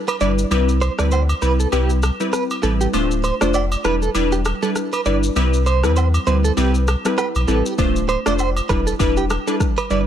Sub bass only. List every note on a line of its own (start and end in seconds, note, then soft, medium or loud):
0.21 0.45 G1 medium
0.51 0.89 C2 loud
0.99 1.33 D2 loud
1.42 1.66 C2 loud
1.72 2.10 C2 loud
2.63 2.87 A1 loud
2.94 3.32 D1 loud
3.42 3.76 F1 medium
3.85 4.09 E1 loud
4.15 4.53 E1 loud
5.06 5.30 G1 medium
5.36 5.85 C2 loud
5.84 6.18 E2 medium
6.27 6.51 D2 loud
6.57 6.95 C2 loud
7.35 7.46 B1 medium
7.48 7.62 A1 medium
7.78 8.17 D1 loud
8.26 8.61 F1 medium
8.69 8.93 E1 loud
9.00 9.38 E1 loud
9.91 10.07 G1 medium